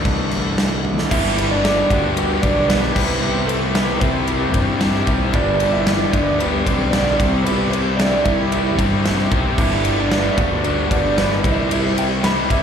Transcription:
Already playing: overdriven electric guitar D3 E3 A3 D4, distorted electric guitar D3 A3 D4
0.05 fingered electric bass C2, kick, crash
0.31 crash
0.58 snare, crash
0.85 high tom
0.98 snare
1.10 fingered electric bass G1, overdriven electric guitar G2 D3 G3 B3 D4 G4, clean electric guitar E4 E5, kick, crash
1.37 overdriven electric guitar G3 B3 D4 G4, ride
1.51 clean electric guitar D4 D5
1.63 overdriven electric guitar G2 D3 G3 B3 D4 G4, snare, ride
1.90 fingered electric bass D2, overdriven electric guitar G3 B3 D4 G4, clean electric guitar F#4 F#5, kick, ride
2.16 overdriven electric guitar G3 B3 D4 G4, ride
2.42 fingered electric bass B1, overdriven electric guitar G2 D3 G3 B3 D4 G4, clean electric guitar D4 D5, kick, ride
2.68 distorted electric guitar G2 D3, overdriven electric guitar G3 B3 D4 G4, clean electric guitar B3 B4, snare, ride
2.83 snare
2.94 fingered electric bass C2, overdriven electric guitar C3 G3 C4 E4 G4, clean electric guitar B3 B4, kick, crash
3.20 overdriven electric guitar C3 G3 C4 E4 G4
3.47 clean electric guitar A3 A4, overdriven electric guitar C4 E4 G4, ride
3.73 overdriven electric guitar C3 G3 C4 E4 G4, clean electric guitar B3 B4, snare, ride
4.00 fingered electric bass C2, distorted electric guitar G3, clean electric guitar C4 C5, overdriven electric guitar C4 E4 G4, kick, ride
4.27 overdriven electric guitar G3 C4 E4 G4, ride
4.52 fingered electric bass G2, overdriven electric guitar C3 G3 C4 E4 G4, kick, ride
4.79 distorted electric guitar C3, overdriven electric guitar G3 C4 E4 G4, snare, ride
4.94 snare
5.06 fingered electric bass B1, distorted electric guitar G3, overdriven electric guitar C4 E4 G4, kick, ride
5.33 fingered electric bass G1, overdriven electric guitar G2 D3 G3 B3 D4 G4, clean electric guitar D4 D5, kick, ride
5.59 overdriven electric guitar G3 B3 D4 G4, ride
5.73 clean electric guitar E4 E5
5.86 overdriven electric guitar G2 D3 G3 B3 D4 G4, snare, ride
6.11 fingered electric bass D2, overdriven electric guitar G3 B3 D4 G4, clean electric guitar D4 D5, kick, ride
6.39 overdriven electric guitar G3 B3 D4 G4, clean electric guitar B3 B4, ride
6.65 fingered electric bass B1, overdriven electric guitar G2 D3 G3 B3 D4 G4, clean electric guitar C4 C5, kick, ride
6.91 distorted electric guitar G2 D3, overdriven electric guitar G3 B3 D4 G4, clean electric guitar D4 D5, snare, ride
7.07 snare
7.19 fingered electric bass C2, overdriven electric guitar C3 G3 C4 E4 G4, clean electric guitar C4 C5, kick, ride
7.44 overdriven electric guitar C3 G3 C4 E4 G4, clean electric guitar B3 B4, ride
7.71 clean electric guitar C4 C5, overdriven electric guitar E4 G4, ride
7.75 overdriven electric guitar C4
7.97 overdriven electric guitar C3 G3 C4, clean electric guitar D4 D5, snare, ride
8.01 overdriven electric guitar E4 G4
8.24 fingered electric bass C2, distorted electric guitar G3, overdriven electric guitar C4 E4 G4, clean electric guitar E4 E5, kick, ride
8.51 overdriven electric guitar G3 C4 E4 G4, ride
8.78 fingered electric bass G2, overdriven electric guitar C3 G3 C4 E4 G4, kick, ride
9.04 distorted electric guitar C3, overdriven electric guitar G3 C4 E4 G4, snare, ride
9.19 snare
9.31 fingered electric bass B1, distorted electric guitar G3, overdriven electric guitar C4 E4 G4, kick, ride
9.58 fingered electric bass G1, overdriven electric guitar G2 D3 G3 B3 D4, clean electric guitar E4 E5, kick, crash
9.84 overdriven electric guitar G3 B3 D4, ride
9.98 clean electric guitar D4 D5
10.10 overdriven electric guitar G2 D3 G3 B3 D4, snare, ride
10.31 clean electric guitar E5
10.37 fingered electric bass D2, overdriven electric guitar G3 B3 D4, clean electric guitar F#4 F#5, kick, ride
10.64 overdriven electric guitar D3 G3 B3 D4, ride
10.90 fingered electric bass G1, overdriven electric guitar G2 D3 G3 B3 D4, clean electric guitar D4 D5, kick, ride
11.16 distorted electric guitar G2, overdriven electric guitar D3 G3 B3 D4, clean electric guitar B3 B4, snare, ride
11.31 snare
11.43 fingered electric bass C2, overdriven electric guitar C3 G3 C4 E4, clean electric guitar E4 E5, kick, ride
11.70 overdriven electric guitar C3 G3 C4 E4, ride
11.97 overdriven electric guitar G3 C4 E4, clean electric guitar G4 G5, ride
12.23 overdriven electric guitar C3 G3 C4 E4, clean electric guitar B4 B5, snare, ride
12.50 fingered electric bass C2, overdriven electric guitar G3 C4 E4, clean electric guitar E4 E5, kick, ride

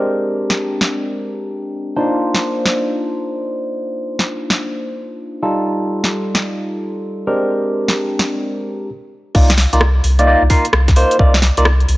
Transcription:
Already playing: tine electric piano G#3 C4 D4 G4 A#4
0.50 snare
0.81 snare
1.96 tine electric piano A#3 D4 D#4 F4 C5
2.35 snare
2.66 snare
4.19 snare
4.50 snare
5.43 tine electric piano G3 D#4 F4 A4
6.04 snare
6.35 snare
7.27 tine electric piano G#3 C4 D4 G4 A#4
7.88 snare
8.19 snare
9.35 sub bass C2, tine electric piano A#3 D#4 F4 D5, kick, crash
9.50 snare, closed hi-hat
9.58 snare, open hi-hat
9.73 sub bass C2, tine electric piano A#3 D#4 F4 D5, closed hi-hat
9.81 cross-stick
10.04 sub bass C2, open hi-hat
10.19 tine electric piano A#3 D#4 F4 D5, closed hi-hat
10.27 tine electric piano A#3 D#4 F4 D5
10.42 sub bass C2
10.50 tine electric piano A#3 D#4 F4 F5, kick, open hi-hat
10.65 closed hi-hat
10.73 sub bass C2, cross-stick
10.88 kick, snare, closed hi-hat
10.96 tine electric piano A#3 D#4 F4 C5, open hi-hat
11.11 closed hi-hat
11.19 sub bass C2, tine electric piano A#3 D#4 F4 D5, kick
11.34 snare, closed hi-hat
11.42 snare, open hi-hat
11.57 sub bass C2, tine electric piano A#3 D#4 F4 D5, closed hi-hat
11.65 cross-stick
11.80 closed hi-hat
11.88 sub bass C2, open hi-hat

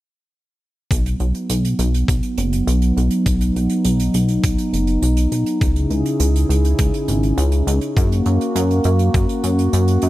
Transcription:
0.91 analog synth bass B1, analog synth pad F#3 B3 D#4, kick, closed hi-hat
1.06 closed hi-hat
1.20 analog synth bass B1, closed hi-hat
1.35 closed hi-hat
1.49 analog synth bass B1, closed hi-hat
1.65 closed hi-hat
1.79 analog synth bass B1, closed hi-hat
1.94 closed hi-hat
2.08 analog synth bass B1, kick, closed hi-hat
2.23 closed hi-hat
2.38 analog synth bass F#1, closed hi-hat
2.53 closed hi-hat
2.67 analog synth bass B1, closed hi-hat
2.82 closed hi-hat
2.97 analog synth bass B1, closed hi-hat
3.11 closed hi-hat
3.26 analog synth bass B1, kick, closed hi-hat
3.41 closed hi-hat
3.55 analog synth bass B1, closed hi-hat
3.70 closed hi-hat
3.85 analog synth bass B1, closed hi-hat
4.00 closed hi-hat
4.14 analog synth bass B1, closed hi-hat
4.28 closed hi-hat
4.43 analog synth bass B1, kick, closed hi-hat
4.58 closed hi-hat
4.73 analog synth bass F#1, closed hi-hat
4.87 closed hi-hat
5.02 analog synth bass B1, closed hi-hat
5.17 closed hi-hat
5.32 analog synth bass B1, closed hi-hat
5.46 closed hi-hat
5.61 analog synth bass C#2, analog synth pad C#3 C#4 E4 G#4, kick, closed hi-hat
5.76 closed hi-hat
5.90 analog synth bass C#2, closed hi-hat
6.06 closed hi-hat
6.20 analog synth bass C#2, closed hi-hat
6.36 closed hi-hat
6.49 analog synth bass C#2, closed hi-hat
6.65 closed hi-hat
6.79 analog synth bass C#2, kick, closed hi-hat
6.94 closed hi-hat
7.08 analog synth bass G#1, closed hi-hat
7.23 closed hi-hat
7.38 analog synth bass C#2, closed hi-hat
7.52 closed hi-hat
7.67 analog synth bass C#2, closed hi-hat
7.81 closed hi-hat
7.97 analog synth bass F#2, analog synth pad A#3 F#4, kick, closed hi-hat
8.12 closed hi-hat
8.26 analog synth bass F#2, closed hi-hat
8.41 closed hi-hat
8.55 analog synth bass F#2, closed hi-hat
8.71 closed hi-hat
8.84 analog synth bass F#2, closed hi-hat
8.99 closed hi-hat
9.14 analog synth bass F#2, kick, closed hi-hat
9.29 closed hi-hat
9.44 analog synth bass F#2, closed hi-hat
9.59 closed hi-hat
9.73 analog synth bass F#2, closed hi-hat
9.88 closed hi-hat
10.02 analog synth bass F#2, closed hi-hat

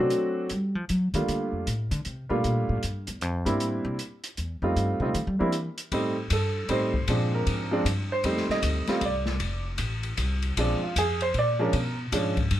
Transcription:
Already playing: upright piano F#3 A3 C4
0.00 upright piano D4 F#4
0.10 closed hi-hat
0.50 upright bass G3, closed hi-hat
0.75 upright bass F3
0.89 upright bass F#3, closed hi-hat
1.14 upright bass D#3, upright piano G3 A3 A#3 D4 F4, closed hi-hat
1.28 upright bass D3, closed hi-hat
1.52 upright bass F2
1.67 upright bass A2, closed hi-hat
1.91 upright bass D3, closed hi-hat
2.05 upright bass C3, closed hi-hat
2.29 upright bass B2, upright piano G3 A3 A#3 D4 F4
2.44 upright bass A#2, closed hi-hat
2.69 upright bass A2
2.83 upright bass G2, closed hi-hat
3.07 upright bass E2, closed hi-hat
3.21 upright bass F2, closed hi-hat
3.45 upright bass G2, upright piano G3 A#3 C4 D4 E4, closed hi-hat
3.60 upright bass A2, closed hi-hat
3.85 upright bass C3
3.99 closed hi-hat
4.24 closed hi-hat
4.37 upright bass E2, closed hi-hat
4.62 upright bass F2, upright piano G3 A3 C4 D#4 F4
4.76 upright bass G2, closed hi-hat
5.00 upright bass C3, upright piano G3 A3 C4 D#4 F4
5.14 upright bass D#3, closed hi-hat
5.27 upright bass G3
5.39 upright bass F3, upright piano G3 A#3 C4 D4 E4
5.52 upright bass E3, closed hi-hat
5.78 closed hi-hat
5.92 upright bass A2, upright piano G3 A3 C4 D#4, kick, ride
6.30 upright bass G2, upright piano A4, kick, hi-hat pedal, ride
6.69 upright bass A2, upright piano G3 A3 C4 D#4 C5, kick, ride
6.94 kick
7.08 upright bass A#2, upright piano F3 G#3 C4 D4, kick, ride
7.35 upright piano A#4
7.47 upright bass G#2, kick, ride
7.71 upright piano F3 G#3 C4 D4
7.85 upright bass G2, kick, hi-hat pedal, ride
8.12 upright piano C5
8.24 upright bass F2, upright piano G3 A3 C4 D#4, kick, ride
8.37 snare
8.49 upright piano D#5, muted upright bass stroke, snare
8.63 upright bass D2, kick, hi-hat pedal, ride
8.87 upright piano G3 A3 C4 F4, muted upright bass stroke, snare, ride
9.01 upright bass C2, kick, ride
9.05 upright piano D5
9.26 snare
9.40 upright bass F1, kick, ride
9.78 upright bass A1, kick, hi-hat pedal, ride
10.03 ride
10.17 upright bass C2, kick, hi-hat pedal, ride
10.42 ride
10.57 upright bass A#1, upright piano F3 G#3 C4 D4 D5, kick, ride
10.83 upright piano F4
10.96 upright bass F2, upright piano G#4, kick, hi-hat pedal, ride
11.21 upright piano C5, ride
11.34 upright bass A#2, kick, ride
11.39 upright piano D5
11.59 upright piano F3 G#3 C#4 D4 A#4
11.73 upright bass B2, kick, ride
12.12 upright bass G#2, upright piano F3 G#3 C#4 D4, kick, hi-hat pedal, ride
12.37 kick, ride
12.51 upright bass G2, kick, ride

